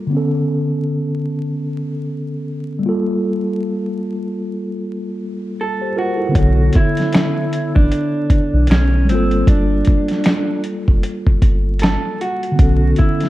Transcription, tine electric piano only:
0, 0, Header, 1, 2, 480
1, 0, Start_track
1, 0, Key_signature, 2, "minor"
1, 0, Tempo, 779221
1, 71, Time_signature, 4, 2, 24, 8
1, 8187, End_track
2, 0, Start_track
2, 0, Title_t, "Tine electric piano"
2, 0, Program_c, 0, 4
2, 0, Control_c, 0, 64, 127
2, 41, Note_on_c, 0, 50, 64
2, 62, Note_on_c, 0, 59, 59
2, 79, Note_on_c, 0, 61, 58
2, 80, Control_c, 0, 64, 0
2, 102, Note_on_c, 0, 69, 73
2, 195, Control_c, 0, 64, 127
2, 1712, Note_off_c, 0, 50, 0
2, 1719, Note_on_c, 0, 55, 63
2, 1722, Note_off_c, 0, 59, 0
2, 1730, Note_off_c, 0, 61, 0
2, 1739, Note_on_c, 0, 58, 61
2, 1742, Note_off_c, 0, 69, 0
2, 1758, Control_c, 0, 64, 0
2, 1761, Note_on_c, 0, 65, 63
2, 1779, Note_on_c, 0, 69, 76
2, 1887, Control_c, 0, 64, 127
2, 3412, Note_off_c, 0, 65, 0
2, 3421, Note_off_c, 0, 69, 0
2, 3582, Note_on_c, 0, 72, 60
2, 3585, Note_on_c, 0, 67, 46
2, 3630, Note_off_c, 0, 55, 0
2, 3641, Note_off_c, 0, 58, 0
2, 3672, Note_off_c, 0, 72, 0
2, 3673, Note_off_c, 0, 67, 0
2, 3674, Note_on_c, 0, 70, 62
2, 3675, Note_on_c, 0, 65, 57
2, 3800, Note_on_c, 0, 69, 53
2, 3802, Note_on_c, 0, 64, 48
2, 3807, Note_off_c, 0, 65, 0
2, 3807, Note_off_c, 0, 70, 0
2, 3873, Note_on_c, 0, 50, 64
2, 3892, Note_on_c, 0, 59, 58
2, 3913, Note_on_c, 0, 73, 56
2, 3918, Control_c, 0, 64, 0
2, 3926, Note_off_c, 0, 69, 0
2, 3934, Note_on_c, 0, 69, 66
2, 4016, Control_c, 0, 64, 127
2, 4035, Note_off_c, 0, 64, 0
2, 5548, Note_off_c, 0, 50, 0
2, 5557, Note_off_c, 0, 59, 0
2, 5567, Note_off_c, 0, 73, 0
2, 5573, Note_on_c, 0, 55, 60
2, 5578, Note_off_c, 0, 69, 0
2, 5594, Note_on_c, 0, 57, 46
2, 5599, Control_c, 0, 64, 0
2, 5616, Note_on_c, 0, 65, 62
2, 5633, Note_on_c, 0, 58, 56
2, 5633, Note_on_c, 0, 69, 74
2, 5640, Note_off_c, 0, 57, 0
2, 5692, Control_c, 0, 64, 127
2, 7478, Note_off_c, 0, 55, 0
2, 7499, Note_off_c, 0, 65, 0
2, 7508, Note_off_c, 0, 58, 0
2, 7508, Note_off_c, 0, 69, 0
2, 7710, Note_on_c, 0, 50, 61
2, 7734, Note_on_c, 0, 59, 56
2, 7754, Note_on_c, 0, 61, 62
2, 7759, Control_c, 0, 64, 0
2, 7775, Note_on_c, 0, 69, 70
2, 7868, Control_c, 0, 64, 127
2, 8187, Note_off_c, 0, 50, 0
2, 8187, Note_off_c, 0, 59, 0
2, 8187, Note_off_c, 0, 61, 0
2, 8187, Note_off_c, 0, 69, 0
2, 8187, End_track
0, 0, End_of_file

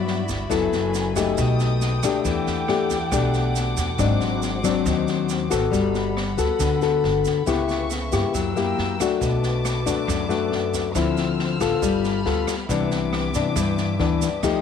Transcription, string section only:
0, 0, Header, 1, 2, 480
1, 0, Start_track
1, 0, Key_signature, 1, "major"
1, 0, Tempo, 435098
1, 565, Time_signature, 4, 2, 24, 8
1, 16123, End_track
2, 0, Start_track
2, 0, Title_t, "String section"
2, 0, Program_c, 0, 48
2, 0, Note_on_c, 0, 66, 70
2, 0, Note_on_c, 0, 74, 61
2, 0, Note_on_c, 0, 76, 56
2, 0, Note_on_c, 0, 83, 72
2, 546, Note_off_c, 0, 74, 0
2, 548, Note_off_c, 0, 66, 0
2, 576, Note_on_c, 0, 69, 73
2, 579, Note_on_c, 0, 80, 53
2, 1485, Note_off_c, 0, 83, 0
2, 1499, Note_off_c, 0, 76, 0
2, 1523, Note_off_c, 0, 80, 0
2, 1529, Note_on_c, 0, 79, 71
2, 1532, Note_on_c, 0, 87, 79
2, 2472, Note_off_c, 0, 69, 0
2, 2479, Note_off_c, 0, 87, 0
2, 2480, Note_on_c, 0, 86, 68
2, 2483, Note_on_c, 0, 69, 68
2, 2491, Note_on_c, 0, 78, 63
2, 4379, Note_off_c, 0, 79, 0
2, 4385, Note_off_c, 0, 69, 0
2, 4399, Note_on_c, 0, 72, 66
2, 6285, Note_off_c, 0, 86, 0
2, 6290, Note_off_c, 0, 78, 0
2, 6303, Note_off_c, 0, 72, 0
2, 6328, Note_on_c, 0, 69, 65
2, 6330, Note_on_c, 0, 78, 59
2, 6330, Note_on_c, 0, 83, 68
2, 8228, Note_off_c, 0, 69, 0
2, 8229, Note_off_c, 0, 78, 0
2, 8229, Note_off_c, 0, 83, 0
2, 8247, Note_on_c, 0, 85, 71
2, 8251, Note_on_c, 0, 71, 66
2, 8251, Note_on_c, 0, 76, 60
2, 9197, Note_off_c, 0, 85, 0
2, 9198, Note_on_c, 0, 88, 73
2, 9199, Note_off_c, 0, 71, 0
2, 9199, Note_off_c, 0, 76, 0
2, 9203, Note_on_c, 0, 70, 70
2, 9207, Note_on_c, 0, 79, 65
2, 10153, Note_off_c, 0, 88, 0
2, 10155, Note_off_c, 0, 70, 0
2, 10157, Note_off_c, 0, 79, 0
2, 10159, Note_on_c, 0, 86, 76
2, 10163, Note_on_c, 0, 71, 67
2, 10163, Note_on_c, 0, 81, 62
2, 12063, Note_off_c, 0, 86, 0
2, 12065, Note_off_c, 0, 71, 0
2, 12065, Note_off_c, 0, 81, 0
2, 12081, Note_on_c, 0, 72, 58
2, 12082, Note_on_c, 0, 88, 68
2, 12088, Note_on_c, 0, 89, 62
2, 13031, Note_on_c, 0, 69, 66
2, 13031, Note_on_c, 0, 83, 80
2, 13034, Note_off_c, 0, 72, 0
2, 13034, Note_off_c, 0, 88, 0
2, 13988, Note_off_c, 0, 69, 0
2, 13988, Note_off_c, 0, 83, 0
2, 13988, Note_off_c, 0, 89, 0
2, 13988, Note_on_c, 0, 76, 62
2, 13989, Note_on_c, 0, 86, 72
2, 13993, Note_on_c, 0, 71, 62
2, 15897, Note_off_c, 0, 76, 0
2, 15897, Note_off_c, 0, 86, 0
2, 15900, Note_off_c, 0, 71, 0
2, 15909, Note_on_c, 0, 87, 71
2, 15915, Note_on_c, 0, 79, 62
2, 15920, Note_on_c, 0, 69, 68
2, 16123, Note_off_c, 0, 69, 0
2, 16123, Note_off_c, 0, 79, 0
2, 16123, Note_off_c, 0, 87, 0
2, 16123, End_track
0, 0, End_of_file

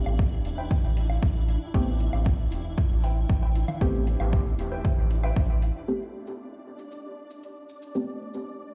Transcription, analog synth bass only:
0, 0, Header, 1, 2, 480
1, 0, Start_track
1, 0, Key_signature, 0, "minor"
1, 0, Tempo, 517241
1, 1618, Time_signature, 4, 2, 24, 8
1, 8112, End_track
2, 0, Start_track
2, 0, Title_t, "Analog synth bass"
2, 0, Program_c, 0, 38
2, 57, Note_on_c, 0, 33, 91
2, 380, Note_off_c, 0, 33, 0
2, 417, Note_on_c, 0, 28, 83
2, 740, Note_off_c, 0, 28, 0
2, 777, Note_on_c, 0, 33, 102
2, 1100, Note_off_c, 0, 33, 0
2, 1137, Note_on_c, 0, 33, 94
2, 1460, Note_off_c, 0, 33, 0
2, 1617, Note_on_c, 0, 33, 100
2, 1940, Note_off_c, 0, 33, 0
2, 1978, Note_on_c, 0, 33, 90
2, 2300, Note_off_c, 0, 33, 0
2, 2338, Note_on_c, 0, 28, 84
2, 2660, Note_off_c, 0, 28, 0
2, 2698, Note_on_c, 0, 33, 96
2, 3020, Note_off_c, 0, 33, 0
2, 3058, Note_on_c, 0, 33, 92
2, 3380, Note_off_c, 0, 33, 0
2, 3537, Note_on_c, 0, 33, 98
2, 3860, Note_off_c, 0, 33, 0
2, 3897, Note_on_c, 0, 33, 91
2, 4220, Note_off_c, 0, 33, 0
2, 4258, Note_on_c, 0, 28, 85
2, 4580, Note_off_c, 0, 28, 0
2, 4618, Note_on_c, 0, 33, 100
2, 4940, Note_off_c, 0, 33, 0
2, 4978, Note_on_c, 0, 33, 90
2, 5300, Note_off_c, 0, 33, 0
2, 8112, End_track
0, 0, End_of_file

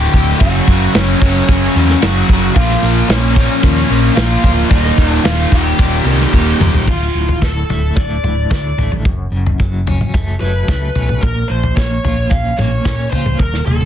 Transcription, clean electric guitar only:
0, 0, Header, 1, 2, 480
1, 0, Start_track
1, 0, Tempo, 539084
1, 360, Time_signature, 4, 2, 24, 8
1, 6119, Tempo, 543478
1, 12283, End_track
2, 0, Start_track
2, 0, Title_t, "Clean electric guitar"
2, 0, Program_c, 0, 27
2, 6123, Note_on_c, 0, 38, 70
2, 6363, Note_on_c, 0, 45, 61
2, 6600, Note_off_c, 0, 45, 0
2, 6611, Note_on_c, 0, 45, 56
2, 6845, Note_on_c, 0, 57, 64
2, 7085, Note_on_c, 0, 50, 65
2, 7311, Note_off_c, 0, 45, 0
2, 7320, Note_off_c, 0, 38, 0
2, 7321, Note_on_c, 0, 45, 61
2, 7552, Note_off_c, 0, 50, 0
2, 7563, Note_on_c, 0, 50, 65
2, 7795, Note_off_c, 0, 57, 0
2, 7805, Note_on_c, 0, 57, 62
2, 8041, Note_off_c, 0, 45, 0
2, 8042, Note_off_c, 0, 50, 0
2, 8043, Note_off_c, 0, 57, 0
2, 8044, Note_on_c, 0, 42, 69
2, 8280, Note_on_c, 0, 49, 63
2, 8526, Note_on_c, 0, 54, 59
2, 8764, Note_on_c, 0, 61, 61
2, 9003, Note_on_c, 0, 57, 69
2, 9236, Note_off_c, 0, 54, 0
2, 9243, Note_off_c, 0, 42, 0
2, 9247, Note_on_c, 0, 54, 62
2, 9482, Note_off_c, 0, 49, 0
2, 9483, Note_off_c, 0, 57, 0
2, 9713, Note_off_c, 0, 61, 0
2, 9724, Note_on_c, 0, 61, 63
2, 9961, Note_on_c, 0, 46, 65
2, 9963, Note_off_c, 0, 61, 0
2, 9965, Note_off_c, 0, 54, 0
2, 10205, Note_on_c, 0, 53, 64
2, 10442, Note_on_c, 0, 58, 62
2, 10682, Note_on_c, 0, 65, 62
2, 10915, Note_on_c, 0, 61, 64
2, 11144, Note_off_c, 0, 58, 0
2, 11155, Note_on_c, 0, 58, 65
2, 11162, Note_off_c, 0, 46, 0
2, 11388, Note_off_c, 0, 61, 0
2, 11399, Note_on_c, 0, 61, 69
2, 11404, Note_off_c, 0, 53, 0
2, 11631, Note_off_c, 0, 65, 0
2, 11642, Note_on_c, 0, 65, 66
2, 11878, Note_off_c, 0, 58, 0
2, 11878, Note_on_c, 0, 39, 65
2, 11880, Note_off_c, 0, 61, 0
2, 11882, Note_off_c, 0, 65, 0
2, 12123, Note_on_c, 0, 46, 66
2, 12283, Note_off_c, 0, 39, 0
2, 12283, Note_off_c, 0, 46, 0
2, 12283, End_track
0, 0, End_of_file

